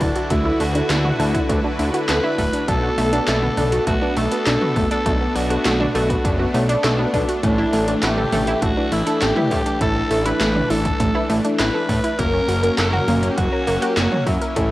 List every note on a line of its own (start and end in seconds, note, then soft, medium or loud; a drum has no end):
0.00 0.12 D1 medium
0.00 2.64 D3 medium
0.00 0.27 D4 medium
0.00 0.32 D4 loud
0.00 12.15 D4 medium
0.00 0.27 E4 medium
0.00 2.64 E4 medium
0.00 0.12 E4 medium
0.00 0.27 F#4 medium
0.00 2.64 F#4 medium
0.00 0.28 A4 medium
0.00 0.27 B4 medium
0.00 kick loud
0.00 open hi-hat medium
0.16 0.22 F#4 medium
0.16 closed hi-hat medium
0.30 0.52 D2 loud
0.30 0.42 A3 loud
0.30 0.72 D4 medium
0.30 0.62 E4 medium
0.30 0.72 E4 medium
0.30 0.72 F#4 medium
0.30 0.72 A4 loud
0.30 2.66 B4 medium
0.30 kick loud
0.30 closed hi-hat loud
0.45 0.57 E4 loud
0.60 0.82 D2 medium
0.60 0.72 A3 loud
0.60 1.82 F#4 loud
0.60 open hi-hat medium
0.75 0.89 D4 medium
0.75 0.90 D4 loud
0.75 0.90 E4 medium
0.75 0.90 F#4 medium
0.75 0.90 A4 loud
0.75 closed hi-hat medium
0.90 1.12 D2 medium
0.90 1.01 E4 medium
0.90 snare loud
0.90 clap loud
0.90 closed hi-hat loud
1.05 1.12 F#4 medium
1.05 mid tom medium
1.20 1.42 D2 medium
1.20 1.31 A3 loud
1.20 1.61 D4 medium
1.20 1.61 E4 medium
1.20 1.61 F#4 medium
1.20 1.61 A4 loud
1.20 open hi-hat medium
1.34 1.46 E4 loud
1.34 kick loud
1.34 closed hi-hat medium
1.49 1.60 D2 loud
1.49 1.61 A3 loud
1.49 kick loud
1.49 closed hi-hat loud
1.64 1.78 D4 medium
1.64 1.73 D4 medium
1.64 1.73 E4 medium
1.64 1.73 F#4 medium
1.64 1.73 B4 medium
1.79 1.90 D2 medium
1.79 1.90 E4 medium
1.79 open hi-hat medium
1.94 2.20 D4 loud
1.94 2.20 E4 medium
1.94 2.01 F#4 medium
1.94 2.20 F#4 medium
1.94 2.20 A4 loud
1.94 closed hi-hat medium
2.09 2.20 D2 medium
2.09 2.20 A3 loud
2.09 2.70 B4 loud
2.09 snare loud
2.09 clap loud
2.09 closed hi-hat loud
2.24 2.65 D4 medium
2.24 2.35 E4 loud
2.24 2.65 E4 medium
2.24 2.65 F#4 medium
2.24 2.65 B4 medium
2.38 2.49 D1 medium
2.38 2.50 A3 loud
2.38 kick medium
2.38 open hi-hat medium
2.53 2.67 D4 medium
2.53 closed hi-hat medium
2.68 2.90 B1 loud
2.68 12.15 A3 medium
2.68 7.39 B3 medium
2.68 3.09 B3 medium
2.68 2.79 D4 medium
2.68 3.09 D4 medium
2.68 3.09 F#4 medium
2.68 3.09 A4 loud
2.68 3.27 A4 loud
2.68 kick loud
2.68 closed hi-hat loud
2.83 2.90 F#4 medium
2.98 3.20 B1 medium
2.98 3.09 A3 loud
2.98 open hi-hat medium
3.13 3.27 B3 loud
3.13 3.24 D4 loud
3.13 3.27 D4 medium
3.13 3.27 F#4 medium
3.13 3.27 A4 loud
3.13 closed hi-hat medium
3.28 3.50 B1 medium
3.28 3.39 A3 loud
3.28 3.83 A4 loud
3.28 snare loud
3.28 clap loud
3.28 closed hi-hat loud
3.42 3.57 B3 medium
3.42 mid tom medium
3.57 3.79 B1 medium
3.57 3.98 B3 medium
3.57 3.69 D4 medium
3.57 3.98 D4 medium
3.57 3.98 F#4 medium
3.57 3.98 A4 loud
3.57 mid tom medium
3.57 open hi-hat medium
3.72 3.79 F#4 medium
3.72 closed hi-hat medium
3.87 3.98 B1 loud
3.87 3.98 A3 loud
3.87 4.18 F#4 loud
3.87 kick loud
3.87 closed hi-hat loud
4.02 4.11 B3 medium
4.02 4.13 D4 loud
4.02 4.11 D4 medium
4.02 4.11 F#4 medium
4.02 4.11 B4 medium
4.17 4.28 B1 medium
4.17 4.28 A3 loud
4.17 4.91 A4 loud
4.17 open hi-hat medium
4.32 4.46 B3 medium
4.32 4.58 B3 loud
4.32 4.58 D4 medium
4.32 4.58 F#4 medium
4.32 4.58 A4 loud
4.32 closed hi-hat medium
4.46 4.57 B1 medium
4.46 4.58 D4 medium
4.46 snare loud
4.46 clap loud
4.46 closed hi-hat loud
4.61 5.02 B3 medium
4.61 5.02 D4 medium
4.61 5.02 F#4 medium
4.61 4.68 F#4 medium
4.61 5.02 B4 medium
4.61 mid tom medium
4.76 4.87 F#1 medium
4.76 4.87 A3 loud
4.76 kick loud
4.76 open hi-hat medium
4.91 5.02 D4 loud
4.91 5.37 A4 loud
4.91 closed hi-hat medium
5.06 5.28 B1 medium
5.06 5.17 A3 loud
5.06 5.47 B3 medium
5.06 5.47 D4 medium
5.06 5.47 F#4 medium
5.06 5.47 A4 medium
5.06 kick loud
5.06 closed hi-hat medium
5.21 5.35 B3 medium
5.36 5.58 B1 loud
5.36 5.47 D4 medium
5.36 5.95 F#4 loud
5.36 open hi-hat medium
5.50 5.65 B3 loud
5.50 5.65 D4 medium
5.50 5.57 F#4 medium
5.50 5.65 F#4 loud
5.50 5.65 A4 loud
5.50 closed hi-hat medium
5.65 5.87 B1 medium
5.65 5.76 A3 loud
5.65 snare loud
5.65 clap loud
5.65 closed hi-hat loud
5.80 5.91 D4 loud
5.80 mid tom medium
5.95 6.17 B1 medium
5.95 6.06 A3 loud
5.95 6.36 B3 medium
5.95 6.36 D4 medium
5.95 6.36 F#4 medium
5.95 6.53 F#4 medium
5.95 6.36 A4 loud
5.95 open hi-hat medium
6.10 6.24 B3 medium
6.10 kick loud
6.10 closed hi-hat medium
6.25 6.47 F#1 loud
6.25 6.36 D4 medium
6.25 kick loud
6.25 closed hi-hat medium
6.39 6.49 B3 medium
6.39 6.48 D4 medium
6.39 6.46 F#4 medium
6.39 6.49 F#4 medium
6.39 6.49 B4 medium
6.54 6.76 B1 medium
6.54 6.66 A3 loud
6.54 6.63 B3 medium
6.54 6.63 D4 medium
6.54 6.63 F#4 medium
6.54 6.63 C#5 loud
6.54 open hi-hat medium
6.69 6.80 D4 loud
6.69 closed hi-hat medium
6.84 7.06 B1 medium
6.84 6.95 A3 loud
6.84 7.40 D4 medium
6.84 snare loud
6.84 clap medium
6.84 closed hi-hat medium
6.99 7.13 B3 medium
6.99 7.08 B3 medium
6.99 7.08 D4 medium
6.99 7.08 F#4 medium
6.99 7.08 B4 loud
7.14 7.25 B1 loud
7.14 7.28 B3 loud
7.14 7.25 D4 medium
7.14 7.28 D4 medium
7.14 7.28 F#4 loud
7.14 7.28 A4 loud
7.14 kick medium
7.14 open hi-hat medium
7.28 7.35 F#4 medium
7.28 closed hi-hat medium
7.43 7.65 A1 medium
7.43 12.15 E3 medium
7.43 7.55 A3 loud
7.43 7.84 A3 medium
7.43 7.84 D4 medium
7.43 7.99 D4 loud
7.43 7.84 E4 medium
7.43 7.84 A4 medium
7.43 kick loud
7.43 closed hi-hat medium
7.58 7.69 E4 loud
7.73 7.95 A1 loud
7.73 7.84 A3 loud
7.73 open hi-hat medium
7.88 8.02 A3 loud
7.88 8.02 D4 medium
7.88 8.03 D4 medium
7.88 8.02 E4 medium
7.88 8.03 A4 loud
7.88 closed hi-hat medium
8.03 8.25 A1 medium
8.03 8.14 E4 medium
8.03 8.64 G4 medium
8.03 snare loud
8.03 clap loud
8.03 closed hi-hat medium
8.18 8.24 A4 medium
8.18 mid tom medium
8.32 8.55 A1 medium
8.32 8.44 A3 loud
8.32 8.74 A3 medium
8.32 8.74 D4 medium
8.32 8.74 E4 medium
8.32 8.74 A4 medium
8.32 mid tom medium
8.32 open hi-hat medium
8.47 8.59 E4 loud
8.47 closed hi-hat medium
8.62 8.73 A1 loud
8.62 8.73 A3 loud
8.62 8.94 F#4 loud
8.62 kick loud
8.62 closed hi-hat medium
8.77 8.86 A3 medium
8.77 8.91 D4 medium
8.77 8.86 D4 medium
8.77 8.86 E4 medium
8.77 8.86 B4 medium
8.92 9.03 A1 medium
8.92 9.03 E4 medium
8.92 9.24 E4 medium
8.92 open hi-hat medium
9.07 9.33 A3 loud
9.07 9.33 D4 loud
9.07 9.33 E4 medium
9.07 9.13 A4 medium
9.07 9.33 A4 loud
9.07 closed hi-hat medium
9.21 9.33 A1 medium
9.21 9.33 A3 loud
9.21 9.81 G4 loud
9.21 snare loud
9.21 clap medium
9.21 closed hi-hat medium
9.36 9.78 A3 medium
9.36 9.78 D4 medium
9.36 9.48 E4 loud
9.36 9.78 E4 medium
9.36 9.78 B4 medium
9.36 mid tom loud
9.51 9.62 A2 medium
9.51 9.62 A3 loud
9.51 kick loud
9.51 open hi-hat medium
9.66 9.80 D4 medium
9.66 closed hi-hat medium
9.81 10.03 A1 loud
9.81 10.22 A3 medium
9.81 10.22 D4 medium
9.81 9.92 E4 medium
9.81 10.22 E4 medium
9.81 10.22 A4 medium
9.81 10.28 A4 loud
9.81 kick loud
9.81 closed hi-hat medium
9.96 10.03 A4 medium
10.11 10.33 A1 medium
10.11 10.22 A3 loud
10.11 open hi-hat medium
10.25 10.40 A3 loud
10.25 10.40 D4 medium
10.25 10.37 E4 loud
10.25 10.40 E4 medium
10.25 10.40 A4 loud
10.25 10.72 B4 loud
10.25 closed hi-hat medium
10.40 10.62 A1 medium
10.40 10.52 A3 loud
10.40 snare loud
10.40 clap loud
10.40 closed hi-hat medium
10.55 10.69 D4 medium
10.55 mid tom medium
10.70 10.92 A1 medium
10.70 11.11 A3 medium
10.70 11.11 D4 medium
10.70 10.81 E4 medium
10.70 11.11 E4 medium
10.70 11.11 A4 loud
10.70 11.32 A4 loud
10.70 open hi-hat medium
10.85 10.92 A4 medium
10.85 kick loud
10.85 closed hi-hat medium
11.00 11.11 A1 loud
11.00 11.11 A3 loud
11.00 kick loud
11.00 closed hi-hat medium
11.15 11.24 A3 medium
11.15 11.24 D4 medium
11.15 11.26 E4 loud
11.15 11.24 E4 medium
11.15 11.24 B4 medium
11.29 11.41 A1 medium
11.29 11.41 A3 loud
11.29 open hi-hat medium
11.44 11.71 A3 loud
11.44 11.59 D4 medium
11.44 11.71 D4 medium
11.44 11.71 E4 medium
11.44 11.71 A4 loud
11.44 closed hi-hat medium
11.59 11.70 A1 medium
11.59 11.70 E4 medium
11.59 12.20 B4 loud
11.59 snare loud
11.59 clap loud
11.59 closed hi-hat medium
11.74 12.15 A3 medium
11.74 12.15 D4 medium
11.74 12.15 E4 medium
11.74 11.81 A4 medium
11.74 12.15 B4 medium
11.89 12.00 A2 medium
11.89 12.00 A3 loud
11.89 kick medium
11.89 open hi-hat medium
12.04 12.15 E4 loud
12.04 closed hi-hat medium
12.18 12.41 F#1 loud
12.18 14.54 F#3 medium
12.18 12.30 A#3 loud
12.18 12.60 A#3 medium
12.18 14.54 A#3 medium
12.18 14.71 C#4 medium
12.18 12.60 C#4 medium
12.18 12.60 F#4 medium
12.18 12.77 A#4 loud
12.18 12.60 A#4 medium
12.18 kick loud
12.18 closed hi-hat medium
12.33 12.48 C#4 medium
12.48 12.70 F#1 medium
12.48 12.60 F#4 medium
12.48 open hi-hat medium
12.63 12.78 A#3 loud
12.63 12.78 C#4 medium
12.63 12.78 F#4 medium
12.63 12.70 A#4 medium
12.63 12.78 A#4 loud
12.63 closed hi-hat medium
12.78 13.00 F#1 medium
12.78 12.89 A#3 loud
12.78 13.27 A#4 loud
12.78 snare loud
12.78 clap loud
12.78 closed hi-hat medium
12.93 13.04 F#4 loud
12.93 mid tom medium
13.08 13.30 F#1 medium
13.08 13.19 A#3 loud
13.08 13.49 A#3 medium
13.08 13.49 C#4 medium
13.08 13.49 F#4 medium
13.08 13.49 A#4 loud
13.08 mid tom medium
13.08 open hi-hat medium
13.23 13.37 C#4 medium
13.23 closed hi-hat medium
13.30 13.38 G4 medium
13.37 13.48 F#1 loud
13.37 13.83 F#4 loud
13.37 13.49 F#4 medium
13.37 kick loud
13.37 closed hi-hat medium
13.52 13.61 A#3 medium
13.52 13.61 C#4 medium
13.52 13.61 F#4 medium
13.52 13.59 A#4 medium
13.52 13.61 C#5 medium
13.67 13.78 F#1 medium
13.67 13.78 A#3 loud
13.67 open hi-hat medium
13.82 14.08 A#3 loud
13.82 14.08 C#4 medium
13.82 13.93 F#4 loud
13.82 14.08 F#4 medium
13.82 13.96 G4 medium
13.82 14.08 A#4 loud
13.82 closed hi-hat medium
13.96 14.08 F#1 medium
13.96 14.08 A#3 loud
13.96 14.24 F#4 loud
13.96 snare loud
13.96 clap loud
13.96 closed hi-hat loud
14.12 14.53 A#3 medium
14.12 14.26 C#4 medium
14.12 14.53 C#4 medium
14.12 14.53 F#4 medium
14.12 14.53 C#5 medium
14.12 mid tom medium
14.26 14.38 F#2 medium
14.26 14.71 E4 medium
14.26 14.38 F#4 medium
14.26 kick loud
14.26 open hi-hat medium
14.41 14.48 A#4 medium
14.41 closed hi-hat medium
14.56 14.71 A1 loud
14.56 14.71 E3 medium
14.56 14.67 A3 loud
14.56 14.71 A3 medium
14.56 14.71 C#4 medium
14.56 14.71 E4 medium
14.56 14.71 A4 medium
14.56 kick loud
14.56 closed hi-hat loud